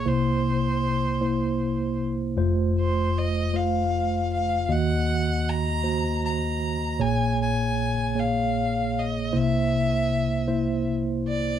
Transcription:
0, 0, Header, 1, 3, 480
1, 0, Start_track
1, 0, Tempo, 772201
1, 29, Time_signature, 6, 3, 24, 8
1, 7206, End_track
2, 0, Start_track
2, 0, Title_t, "Violin"
2, 0, Program_c, 0, 40
2, 49, Note_on_c, 0, 72, 73
2, 1236, Note_off_c, 0, 72, 0
2, 1737, Note_on_c, 0, 72, 64
2, 1977, Note_on_c, 0, 75, 72
2, 1986, Note_off_c, 0, 72, 0
2, 2214, Note_on_c, 0, 77, 74
2, 2223, Note_off_c, 0, 75, 0
2, 2680, Note_off_c, 0, 77, 0
2, 2695, Note_on_c, 0, 77, 77
2, 2935, Note_on_c, 0, 78, 89
2, 2944, Note_off_c, 0, 77, 0
2, 3413, Note_on_c, 0, 82, 94
2, 3422, Note_off_c, 0, 78, 0
2, 3881, Note_off_c, 0, 82, 0
2, 3887, Note_on_c, 0, 82, 77
2, 4359, Note_on_c, 0, 80, 78
2, 4369, Note_off_c, 0, 82, 0
2, 4595, Note_off_c, 0, 80, 0
2, 4612, Note_on_c, 0, 80, 80
2, 5096, Note_on_c, 0, 77, 75
2, 5106, Note_off_c, 0, 80, 0
2, 5587, Note_on_c, 0, 75, 69
2, 5596, Note_off_c, 0, 77, 0
2, 5823, Note_on_c, 0, 76, 83
2, 5832, Note_off_c, 0, 75, 0
2, 6766, Note_off_c, 0, 76, 0
2, 7010, Note_on_c, 0, 74, 77
2, 7206, Note_off_c, 0, 74, 0
2, 7206, End_track
3, 0, Start_track
3, 0, Title_t, "Tine electric piano"
3, 0, Program_c, 1, 4
3, 0, Control_c, 1, 64, 127
3, 34, Note_on_c, 1, 58, 60
3, 35, Note_on_c, 1, 48, 48
3, 35, Note_on_c, 1, 72, 62
3, 36, Note_on_c, 1, 64, 54
3, 37, Note_on_c, 1, 36, 48
3, 38, Control_c, 1, 64, 0
3, 147, Control_c, 1, 64, 127
3, 600, Note_off_c, 1, 58, 0
3, 600, Note_off_c, 1, 72, 0
3, 601, Note_off_c, 1, 64, 0
3, 751, Note_on_c, 1, 64, 50
3, 753, Note_on_c, 1, 58, 55
3, 754, Note_on_c, 1, 72, 68
3, 1318, Note_off_c, 1, 64, 0
3, 1319, Note_off_c, 1, 58, 0
3, 1319, Note_off_c, 1, 72, 0
3, 1445, Note_off_c, 1, 36, 0
3, 1445, Note_off_c, 1, 48, 0
3, 1472, Note_on_c, 1, 41, 57
3, 1472, Note_on_c, 1, 57, 67
3, 1475, Control_c, 1, 64, 0
3, 1475, Note_on_c, 1, 65, 65
3, 1476, Note_on_c, 1, 29, 57
3, 1478, Note_on_c, 1, 72, 87
3, 1589, Control_c, 1, 64, 127
3, 2039, Note_off_c, 1, 57, 0
3, 2040, Note_off_c, 1, 65, 0
3, 2042, Note_off_c, 1, 72, 0
3, 2197, Note_on_c, 1, 57, 49
3, 2200, Note_on_c, 1, 65, 46
3, 2200, Note_on_c, 1, 72, 56
3, 2761, Note_off_c, 1, 57, 0
3, 2763, Note_off_c, 1, 65, 0
3, 2763, Note_off_c, 1, 72, 0
3, 2885, Note_off_c, 1, 41, 0
3, 2887, Note_off_c, 1, 29, 0
3, 2913, Control_c, 1, 64, 0
3, 2913, Note_on_c, 1, 66, 54
3, 2914, Note_on_c, 1, 39, 49
3, 2915, Note_on_c, 1, 51, 46
3, 2915, Note_on_c, 1, 58, 59
3, 2918, Note_on_c, 1, 75, 65
3, 3020, Control_c, 1, 64, 127
3, 3480, Note_off_c, 1, 66, 0
3, 3481, Note_off_c, 1, 58, 0
3, 3483, Note_off_c, 1, 75, 0
3, 3626, Note_on_c, 1, 58, 43
3, 3628, Note_on_c, 1, 66, 45
3, 3628, Note_on_c, 1, 72, 55
3, 4198, Note_off_c, 1, 58, 0
3, 4199, Note_off_c, 1, 66, 0
3, 4199, Note_off_c, 1, 72, 0
3, 4329, Note_off_c, 1, 39, 0
3, 4329, Note_off_c, 1, 51, 0
3, 4346, Note_on_c, 1, 46, 49
3, 4349, Note_on_c, 1, 73, 64
3, 4350, Note_on_c, 1, 58, 55
3, 4351, Note_on_c, 1, 34, 50
3, 4351, Note_on_c, 1, 68, 54
3, 4358, Control_c, 1, 64, 0
3, 4456, Control_c, 1, 64, 127
3, 4921, Note_off_c, 1, 58, 0
3, 4921, Note_off_c, 1, 73, 0
3, 4922, Note_off_c, 1, 68, 0
3, 5065, Note_on_c, 1, 58, 51
3, 5069, Note_on_c, 1, 68, 46
3, 5072, Note_on_c, 1, 73, 49
3, 5638, Note_off_c, 1, 58, 0
3, 5640, Note_off_c, 1, 68, 0
3, 5642, Note_off_c, 1, 73, 0
3, 5765, Note_off_c, 1, 46, 0
3, 5768, Note_off_c, 1, 34, 0
3, 5797, Note_on_c, 1, 48, 50
3, 5797, Note_on_c, 1, 64, 53
3, 5798, Note_on_c, 1, 36, 50
3, 5798, Note_on_c, 1, 58, 56
3, 5799, Note_on_c, 1, 72, 70
3, 5801, Control_c, 1, 64, 0
3, 5914, Control_c, 1, 64, 127
3, 6363, Note_off_c, 1, 64, 0
3, 6364, Note_off_c, 1, 58, 0
3, 6365, Note_off_c, 1, 72, 0
3, 6513, Note_on_c, 1, 58, 55
3, 6513, Note_on_c, 1, 72, 67
3, 6515, Note_on_c, 1, 64, 55
3, 7081, Note_off_c, 1, 58, 0
3, 7081, Note_off_c, 1, 72, 0
3, 7082, Note_off_c, 1, 64, 0
3, 7206, Note_off_c, 1, 36, 0
3, 7206, Note_off_c, 1, 48, 0
3, 7206, End_track
0, 0, End_of_file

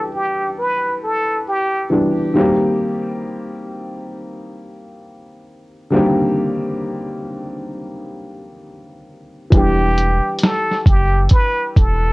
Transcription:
0, 0, Header, 1, 5, 480
1, 0, Start_track
1, 0, Tempo, 895522
1, 1262, Time_signature, 4, 2, 24, 8
1, 6501, End_track
2, 0, Start_track
2, 0, Title_t, "Muted trumpet"
2, 0, Program_c, 0, 59
2, 72, Note_on_c, 0, 67, 78
2, 285, Note_off_c, 0, 67, 0
2, 314, Note_on_c, 0, 71, 78
2, 526, Note_off_c, 0, 71, 0
2, 555, Note_on_c, 0, 69, 79
2, 767, Note_off_c, 0, 69, 0
2, 796, Note_on_c, 0, 67, 82
2, 1007, Note_off_c, 0, 67, 0
2, 5115, Note_on_c, 0, 67, 97
2, 5567, Note_off_c, 0, 67, 0
2, 5595, Note_on_c, 0, 69, 83
2, 5807, Note_off_c, 0, 69, 0
2, 5834, Note_on_c, 0, 67, 83
2, 6047, Note_off_c, 0, 67, 0
2, 6075, Note_on_c, 0, 71, 93
2, 6287, Note_off_c, 0, 71, 0
2, 6314, Note_on_c, 0, 69, 84
2, 6501, Note_off_c, 0, 69, 0
2, 6501, End_track
3, 0, Start_track
3, 0, Title_t, "Upright piano"
3, 0, Program_c, 1, 0
3, 0, Control_c, 1, 64, 127
3, 0, Note_on_c, 1, 52, 65
3, 0, Note_on_c, 1, 55, 59
3, 0, Note_on_c, 1, 59, 55
3, 0, Note_on_c, 1, 62, 56
3, 0, Note_on_c, 1, 67, 69
3, 991, Note_off_c, 1, 52, 0
3, 995, Note_off_c, 1, 55, 0
3, 998, Note_off_c, 1, 59, 0
3, 1003, Note_off_c, 1, 62, 0
3, 1006, Note_off_c, 1, 67, 0
3, 1017, Note_on_c, 1, 52, 56
3, 1021, Note_on_c, 1, 55, 44
3, 1026, Note_on_c, 1, 59, 46
3, 1029, Note_on_c, 1, 62, 47
3, 1033, Note_on_c, 1, 67, 50
3, 1252, Note_on_c, 1, 51, 69
3, 1253, Note_off_c, 1, 55, 0
3, 1259, Note_off_c, 1, 52, 0
3, 1262, Note_on_c, 1, 55, 76
3, 1264, Note_off_c, 1, 59, 0
3, 1265, Note_off_c, 1, 62, 0
3, 1267, Note_off_c, 1, 67, 0
3, 1269, Control_c, 1, 64, 0
3, 1269, Note_on_c, 1, 58, 71
3, 1277, Note_on_c, 1, 60, 62
3, 1285, Note_on_c, 1, 67, 75
3, 1346, Control_c, 1, 64, 127
3, 3156, Note_off_c, 1, 51, 0
3, 3160, Note_off_c, 1, 55, 0
3, 3164, Note_off_c, 1, 58, 0
3, 3164, Note_on_c, 1, 50, 57
3, 3168, Note_off_c, 1, 60, 0
3, 3172, Note_off_c, 1, 67, 0
3, 3172, Note_on_c, 1, 55, 69
3, 3181, Note_on_c, 1, 58, 69
3, 3189, Note_on_c, 1, 60, 61
3, 3196, Note_on_c, 1, 67, 81
3, 3199, Note_on_c, 1, 51, 69
3, 3216, Note_off_c, 1, 50, 0
3, 5076, Note_off_c, 1, 55, 0
3, 5080, Note_off_c, 1, 58, 0
3, 5084, Note_off_c, 1, 60, 0
3, 5088, Note_off_c, 1, 67, 0
3, 5089, Note_off_c, 1, 51, 0
3, 5093, Note_on_c, 1, 52, 59
3, 5101, Note_on_c, 1, 55, 54
3, 5109, Note_on_c, 1, 59, 50
3, 5110, Control_c, 1, 64, 0
3, 5116, Note_on_c, 1, 62, 58
3, 5125, Note_on_c, 1, 67, 65
3, 5189, Control_c, 1, 64, 127
3, 6501, Note_off_c, 1, 52, 0
3, 6501, Note_off_c, 1, 55, 0
3, 6501, Note_off_c, 1, 59, 0
3, 6501, Note_off_c, 1, 62, 0
3, 6501, Note_off_c, 1, 67, 0
3, 6501, End_track
4, 0, Start_track
4, 0, Title_t, "Sub bass"
4, 0, Program_c, 2, 38
4, 5104, Note_on_c, 2, 28, 102
4, 5471, Note_off_c, 2, 28, 0
4, 5822, Note_on_c, 2, 30, 77
4, 6047, Note_off_c, 2, 30, 0
4, 6306, Note_on_c, 2, 28, 99
4, 6501, Note_off_c, 2, 28, 0
4, 6501, End_track
5, 0, Start_track
5, 0, Title_t, "Drums"
5, 5103, Note_on_c, 9, 36, 111
5, 5103, Note_on_c, 9, 42, 76
5, 5156, Note_off_c, 9, 36, 0
5, 5157, Note_off_c, 9, 42, 0
5, 5348, Note_on_c, 9, 42, 61
5, 5401, Note_off_c, 9, 42, 0
5, 5568, Note_on_c, 9, 42, 66
5, 5593, Note_on_c, 9, 38, 107
5, 5621, Note_off_c, 9, 42, 0
5, 5647, Note_off_c, 9, 38, 0
5, 5743, Note_on_c, 9, 38, 29
5, 5797, Note_off_c, 9, 38, 0
5, 5821, Note_on_c, 9, 36, 93
5, 5825, Note_on_c, 9, 42, 70
5, 5874, Note_off_c, 9, 36, 0
5, 5879, Note_off_c, 9, 42, 0
5, 6053, Note_on_c, 9, 42, 66
5, 6063, Note_on_c, 9, 36, 79
5, 6107, Note_off_c, 9, 42, 0
5, 6116, Note_off_c, 9, 36, 0
5, 6305, Note_on_c, 9, 36, 86
5, 6308, Note_on_c, 9, 42, 57
5, 6359, Note_off_c, 9, 36, 0
5, 6362, Note_off_c, 9, 42, 0
5, 6501, End_track
0, 0, End_of_file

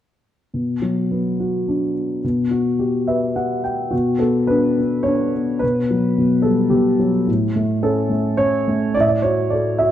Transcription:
0, 0, Header, 1, 2, 480
1, 0, Start_track
1, 0, Key_signature, 2, "minor"
1, 0, Tempo, 567644
1, 455, Time_signature, 3, 2, 24, 8
1, 4286, Tempo, 552486
1, 7166, Tempo, 567108
1, 8462, End_track
2, 0, Start_track
2, 0, Title_t, "Grand piano"
2, 0, Program_c, 0, 0
2, 453, Note_on_c, 0, 47, 34
2, 627, Control_c, 0, 64, 127
2, 693, Note_on_c, 0, 54, 35
2, 940, Note_on_c, 0, 59, 36
2, 1182, Note_on_c, 0, 66, 39
2, 1421, Note_on_c, 0, 62, 35
2, 1622, Note_off_c, 0, 54, 0
2, 1852, Note_off_c, 0, 47, 0
2, 1858, Note_off_c, 0, 59, 0
2, 1866, Note_off_c, 0, 66, 0
2, 1874, Note_off_c, 0, 62, 0
2, 1895, Note_on_c, 0, 47, 48
2, 1899, Control_c, 0, 64, 0
2, 2048, Control_c, 0, 64, 127
2, 2120, Note_on_c, 0, 66, 41
2, 2360, Note_on_c, 0, 67, 42
2, 2600, Note_on_c, 0, 76, 44
2, 2601, Note_on_c, 0, 71, 44
2, 2821, Note_off_c, 0, 76, 0
2, 2826, Note_off_c, 0, 67, 0
2, 2839, Note_on_c, 0, 67, 34
2, 2840, Note_on_c, 0, 78, 46
2, 3047, Note_off_c, 0, 66, 0
2, 3062, Note_off_c, 0, 78, 0
2, 3077, Note_on_c, 0, 79, 47
2, 3290, Note_off_c, 0, 47, 0
2, 3301, Note_off_c, 0, 71, 0
2, 3303, Note_off_c, 0, 79, 0
2, 3303, Note_on_c, 0, 66, 49
2, 3307, Note_off_c, 0, 67, 0
2, 3316, Note_on_c, 0, 47, 40
2, 3329, Control_c, 0, 64, 0
2, 3490, Control_c, 0, 64, 127
2, 3541, Note_on_c, 0, 69, 56
2, 3562, Note_on_c, 0, 59, 38
2, 3563, Note_off_c, 0, 66, 0
2, 3778, Note_off_c, 0, 69, 0
2, 3782, Note_on_c, 0, 71, 67
2, 3803, Note_on_c, 0, 62, 40
2, 4035, Note_off_c, 0, 59, 0
2, 4047, Note_on_c, 0, 59, 39
2, 4240, Note_off_c, 0, 71, 0
2, 4252, Note_on_c, 0, 73, 69
2, 4266, Note_off_c, 0, 62, 0
2, 4279, Note_on_c, 0, 62, 41
2, 4514, Note_off_c, 0, 59, 0
2, 4527, Note_on_c, 0, 59, 38
2, 4733, Note_off_c, 0, 47, 0
2, 4742, Note_on_c, 0, 71, 70
2, 4752, Note_off_c, 0, 62, 0
2, 4762, Note_off_c, 0, 59, 0
2, 4767, Note_off_c, 0, 73, 0
2, 4772, Note_on_c, 0, 47, 47
2, 4781, Control_c, 0, 64, 0
2, 4907, Control_c, 0, 64, 127
2, 5013, Note_on_c, 0, 54, 39
2, 5236, Note_off_c, 0, 47, 0
2, 5249, Note_on_c, 0, 47, 45
2, 5461, Note_on_c, 0, 69, 60
2, 5478, Note_on_c, 0, 55, 39
2, 5493, Note_off_c, 0, 71, 0
2, 5701, Note_on_c, 0, 67, 53
2, 5703, Note_off_c, 0, 47, 0
2, 5716, Note_on_c, 0, 47, 38
2, 5720, Note_off_c, 0, 69, 0
2, 5938, Note_off_c, 0, 54, 0
2, 5958, Note_on_c, 0, 54, 44
2, 6048, Note_off_c, 0, 67, 0
2, 6180, Note_off_c, 0, 55, 0
2, 6187, Note_off_c, 0, 47, 0
2, 6195, Note_off_c, 0, 54, 0
2, 6201, Note_on_c, 0, 45, 48
2, 6218, Control_c, 0, 64, 0
2, 6362, Control_c, 0, 64, 127
2, 6446, Note_on_c, 0, 57, 46
2, 6682, Note_on_c, 0, 61, 47
2, 6685, Note_on_c, 0, 69, 69
2, 6903, Note_off_c, 0, 57, 0
2, 6916, Note_on_c, 0, 57, 42
2, 7132, Note_off_c, 0, 69, 0
2, 7154, Note_off_c, 0, 61, 0
2, 7157, Note_on_c, 0, 73, 85
2, 7167, Note_on_c, 0, 61, 40
2, 7401, Note_off_c, 0, 57, 0
2, 7413, Note_on_c, 0, 57, 48
2, 7607, Note_off_c, 0, 45, 0
2, 7629, Note_off_c, 0, 61, 0
2, 7641, Note_off_c, 0, 57, 0
2, 7641, Note_on_c, 0, 74, 79
2, 7653, Note_on_c, 0, 45, 44
2, 7654, Note_off_c, 0, 73, 0
2, 7655, Control_c, 0, 64, 0
2, 7691, Note_on_c, 0, 76, 61
2, 7702, Note_off_c, 0, 74, 0
2, 7755, Note_off_c, 0, 76, 0
2, 7756, Note_on_c, 0, 74, 64
2, 7798, Control_c, 0, 64, 127
2, 7875, Note_on_c, 0, 73, 68
2, 7884, Note_off_c, 0, 74, 0
2, 7892, Note_on_c, 0, 66, 42
2, 8110, Note_on_c, 0, 74, 62
2, 8126, Note_off_c, 0, 73, 0
2, 8130, Note_on_c, 0, 69, 43
2, 8352, Note_on_c, 0, 76, 61
2, 8357, Note_off_c, 0, 66, 0
2, 8365, Note_off_c, 0, 74, 0
2, 8370, Note_on_c, 0, 66, 37
2, 8462, Note_off_c, 0, 45, 0
2, 8462, Note_off_c, 0, 66, 0
2, 8462, Note_off_c, 0, 69, 0
2, 8462, Note_off_c, 0, 76, 0
2, 8462, End_track
0, 0, End_of_file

